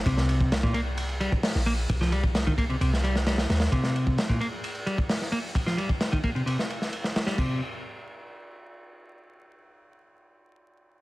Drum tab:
CC |----------------|----------------|----------------|----------------|
RD |x-x-x-x-xxx---x-|x-x-x-xxx-x-xxxx|x-x-x-x-xxx---x-|x-x-x-xxx-x-x-x-|
HH |------------o---|----------------|------------o---|----------------|
SD |-o--o-------oo--|-o--o----o-ooooo|-o--o-------oo--|-o--o----o-o-ooo|
BD |o--o-o-----o----|o--o-oo---------|o--o-o-----o----|o--o-oo---------|

CC |x---------------|----------------|
RD |----------------|----------------|
HH |----------------|----------------|
SD |----------------|----------------|
BD |o---------------|----------------|